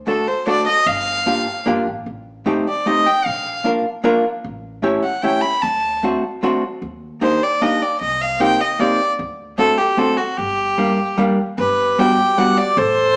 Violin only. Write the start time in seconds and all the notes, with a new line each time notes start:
0.07 A4
0.28 C5
0.48 D5
0.67 D#5
0.87 F5
2.69 D5
2.87 D#5
3.07 G5
3.26 F5
5.04 F#5
5.23 G5
5.42 B5
5.62 A5
7.22 C5
7.43 D5
7.62 D#5
7.82 D5
8.01 D#5
8.21 F5
8.41 G5
8.61 D#5
8.81 D5
9.58 A4
9.78 G4
9.99 A4
10.18 F#4
10.37 G4
11.59 B4
11.99 G5
12.39 F#5
12.58 D5
12.79 C5